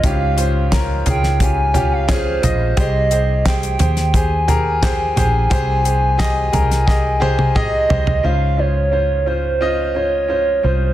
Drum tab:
HH |x-x-x-x-x-x-x-x-|x-x-xxxxx-x-x-x-|x-x-x-xx--------|----------------|
CP |----x-------x---|----x-------x---|----x-----------|----------------|
SD |----o--o----o---|----o--o----o---|----o--oo-------|----------------|
T1 |----------------|----------------|----------oo----|----------------|
T2 |----------------|----------------|------------o---|----------------|
FT |------o---o---o-|------o---o---o-|------o-------oo|----------------|
BD |o---o---o---o---|o---o---o---o---|o---o---o---o---|----------------|